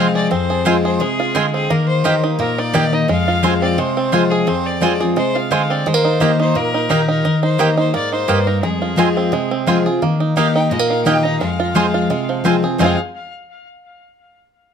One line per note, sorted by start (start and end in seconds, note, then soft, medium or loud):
0.00 0.27 C3 medium
0.00 0.29 F3 medium
0.00 0.28 G#3 medium
0.00 0.29 G#3 medium
0.00 0.30 C4 medium
0.00 0.11 F4 medium
0.00 0.30 F4 medium
0.00 0.12 F5 loud
0.15 0.49 G#4 medium
0.15 0.30 D5 medium
0.31 0.97 F2 medium
0.31 0.81 C4 medium
0.31 0.81 C5 medium
0.50 0.84 G#4 medium
0.65 0.98 F3 medium
0.65 0.99 G#3 medium
0.65 1.00 G#3 medium
0.65 0.75 C4 medium
0.65 0.99 C4 medium
0.65 0.75 F4 loud
0.65 0.99 F4 medium
0.65 0.75 C5 loud
0.65 0.76 G#5 loud
0.84 1.32 G#4 medium
0.84 1.02 C5 medium
1.00 1.33 C3 medium
1.00 1.34 G#3 medium
1.00 1.54 G#4 loud
1.20 1.67 F4 medium
1.35 1.68 D3 medium
1.35 1.70 G#3 medium
1.35 1.44 C4 loud
1.35 1.45 F4 medium
1.35 1.45 C5 medium
1.35 1.45 G#5 loud
1.54 1.70 C4 medium
1.54 1.72 G#4 medium
1.70 2.03 D#3 medium
1.70 2.04 A#3 medium
1.70 1.87 A#4 medium
1.88 2.20 C5 loud
2.04 2.37 D#3 medium
2.04 2.14 A#3 medium
2.04 2.38 A#3 medium
2.04 2.38 D#4 medium
2.04 2.14 G4 medium
2.04 2.38 G4 medium
2.04 2.14 D#5 medium
2.04 2.14 G5 loud
2.24 2.57 D#4 medium
2.39 3.05 A#2 medium
2.39 2.89 A#3 medium
2.39 2.60 A#4 medium
2.58 2.73 D#4 medium
2.58 2.96 D5 loud
2.73 3.07 D#3 medium
2.73 2.83 A#3 medium
2.73 3.07 A#3 medium
2.73 2.92 D#4 medium
2.73 3.07 D#4 medium
2.73 2.84 G4 medium
2.73 3.08 G4 medium
2.73 2.84 D#5 medium
2.73 2.84 G5 loud
2.93 3.09 D#4 medium
2.93 3.09 D#5 medium
3.08 3.75 F2 medium
3.08 3.43 G#3 medium
3.08 3.59 F5 loud
3.28 4.13 F4 medium
3.42 3.76 F3 medium
3.42 3.76 G#3 medium
3.42 3.77 G#3 medium
3.42 3.53 C4 medium
3.42 3.77 C4 medium
3.42 3.53 F4 medium
3.42 3.77 F4 medium
3.42 3.53 C5 medium
3.42 3.53 G#5 medium
3.62 3.96 C4 medium
3.62 3.80 D5 medium
3.78 4.44 C3 medium
3.78 4.28 G#3 medium
3.78 4.32 C5 medium
3.97 4.44 C4 medium
4.12 4.45 F3 medium
4.12 4.46 G#3 medium
4.12 4.22 C4 medium
4.12 4.46 C4 medium
4.12 4.22 F4 medium
4.12 4.62 F4 medium
4.12 4.46 F4 medium
4.12 4.23 C5 medium
4.12 4.23 G#5 medium
4.31 4.49 G#4 medium
4.31 4.79 G#4 medium
4.47 5.13 F2 medium
4.47 4.97 C4 medium
4.47 4.68 C5 loud
4.66 5.01 D5 medium
4.81 4.99 F3 medium
4.81 4.99 G#3 medium
4.81 5.16 G#3 medium
4.81 4.91 C4 medium
4.81 5.00 C4 medium
4.81 4.92 F4 medium
4.81 4.99 F4 medium
4.81 4.92 C5 loud
4.81 4.92 G#5 loud
5.00 5.17 C4 medium
5.00 5.16 F4 medium
5.00 5.48 G#4 medium
5.16 5.50 C3 medium
5.16 5.51 G#3 medium
5.16 5.37 C5 loud
5.35 5.83 F4 medium
5.35 5.52 F5 medium
5.51 5.84 D3 medium
5.51 5.85 G#3 medium
5.51 5.61 C4 medium
5.51 5.61 F4 medium
5.51 5.61 C5 medium
5.51 5.72 F5 medium
5.51 5.61 G#5 medium
5.70 5.86 C4 medium
5.70 5.89 D5 medium
5.86 6.19 D#3 medium
5.86 5.94 G#3 medium
5.86 6.40 C5 medium
5.94 6.20 A#3 medium
6.05 6.40 D#4 medium
6.20 6.53 D#3 medium
6.20 6.30 A#3 medium
6.20 6.54 A#3 medium
6.20 6.54 D#4 medium
6.20 6.30 G4 medium
6.20 6.54 G4 medium
6.20 6.31 D#5 medium
6.20 6.31 G5 medium
6.40 6.73 D#4 medium
6.40 6.58 C5 medium
6.55 7.21 A#2 medium
6.55 7.05 A#3 medium
6.55 7.09 A#4 medium
6.74 6.89 D#4 medium
6.89 7.23 D#3 medium
6.89 6.99 A#3 medium
6.89 7.23 A#3 medium
6.89 7.07 D#4 medium
6.89 7.23 D#4 medium
6.89 7.00 G4 medium
6.89 7.24 G4 medium
6.89 7.00 D#5 medium
6.89 7.00 G5 loud
7.08 7.24 D#4 medium
7.08 7.41 A#4 medium
7.25 7.57 D#3 medium
7.25 7.42 D#4 medium
7.43 7.76 D#4 medium
7.43 7.76 C5 medium
7.58 7.92 D#3 medium
7.58 7.69 A#3 medium
7.58 7.92 A#3 medium
7.58 7.93 D#4 medium
7.58 7.69 G4 loud
7.58 7.93 G4 medium
7.58 7.69 D#5 loud
7.58 7.69 G5 loud
7.77 8.11 D#4 medium
7.77 7.93 C5 medium
7.94 8.27 G#2 medium
7.94 8.27 A#3 medium
7.94 8.12 D5 loud
8.12 8.46 D#4 medium
8.12 8.49 C5 loud
8.28 8.61 G2 medium
8.28 8.38 A#3 medium
8.28 8.63 A#3 medium
8.28 8.38 G4 loud
8.28 8.38 D#5 medium
8.28 8.39 G5 loud
8.47 8.63 D#4 medium
8.47 8.62 A#4 medium
8.63 9.29 F2 medium
8.63 8.97 G#3 medium
8.63 9.82 G#4 medium
8.82 9.29 F4 medium
8.96 9.30 F3 medium
8.96 9.31 G#3 medium
8.96 9.32 G#3 medium
8.96 9.07 C4 medium
8.96 9.31 C4 medium
8.96 9.08 F4 medium
8.96 9.31 F4 medium
8.96 9.08 C5 medium
8.96 9.08 G#5 loud
9.17 9.50 C4 medium
9.32 9.98 C3 medium
9.32 9.82 G#3 medium
9.51 9.99 C4 medium
9.66 9.85 F3 medium
9.66 9.85 G#3 medium
9.66 9.77 C4 medium
9.66 9.86 C4 medium
9.66 9.77 F4 medium
9.66 10.02 F4 medium
9.66 9.85 F4 medium
9.66 9.77 C5 medium
9.66 9.78 G#5 loud
9.86 10.02 C4 soft
9.86 10.01 F4 medium
9.86 10.02 G#4 medium
10.02 10.35 D#3 medium
10.02 10.52 A#3 medium
10.20 10.36 D#4 medium
10.36 10.69 D#3 medium
10.36 10.46 A#3 medium
10.36 10.70 A#3 medium
10.36 10.54 D#4 medium
10.36 10.70 D#4 medium
10.36 10.46 G4 medium
10.36 10.71 G4 medium
10.36 10.47 D#5 medium
10.36 10.54 F5 medium
10.36 10.47 G5 medium
10.55 11.03 D#4 medium
10.55 10.70 G5 medium
10.71 11.37 A#2 medium
10.71 10.79 G#3 medium
10.71 10.88 D#5 medium
10.79 11.06 A#3 medium
10.89 11.38 D#3 medium
10.89 11.04 F5 medium
11.05 11.39 D#3 medium
11.05 11.39 A#3 medium
11.05 11.16 A#3 medium
11.05 11.39 D#4 medium
11.05 11.24 D#4 medium
11.05 11.16 G4 medium
11.05 11.40 G4 loud
11.05 11.16 D#5 medium
11.05 11.25 G5 loud
11.05 11.16 G5 medium
11.23 11.41 D#4 medium
11.23 11.39 A#5 loud
11.39 12.07 F2 medium
11.39 11.90 G#3 medium
11.39 12.40 F5 medium
11.60 11.93 F4 medium
11.75 12.08 F3 medium
11.75 12.08 G#3 medium
11.75 11.85 C4 medium
11.75 12.09 C4 medium
11.75 11.85 F4 loud
11.75 12.09 F4 medium
11.75 12.25 G#4 medium
11.75 11.85 C5 medium
11.75 11.85 G#5 loud
11.94 12.42 F4 medium
12.10 12.76 C3 medium
12.10 12.60 G#3 medium
12.29 12.77 F3 medium
12.44 12.62 F3 medium
12.44 12.63 G#3 medium
12.44 12.54 C4 medium
12.44 12.80 C4 medium
12.44 12.63 C4 medium
12.44 12.55 F4 medium
12.44 12.61 F4 medium
12.44 12.55 C5 medium
12.44 12.55 G#5 medium
12.63 12.79 C4 soft
12.63 12.79 F4 medium
12.63 12.80 G#4 medium
12.78 12.94 F2 medium
12.78 12.94 C3 medium
12.78 12.94 F3 medium
12.78 12.97 G#3 medium
12.78 12.95 G#3 medium
12.78 12.94 C4 medium
12.78 12.95 C4 loud
12.78 12.98 C4 medium
12.78 12.95 F4 medium
12.78 12.95 C5 medium
12.78 12.97 F5 medium
12.78 12.95 G#5 medium
12.84 12.99 F4 medium
12.84 13.00 G#4 medium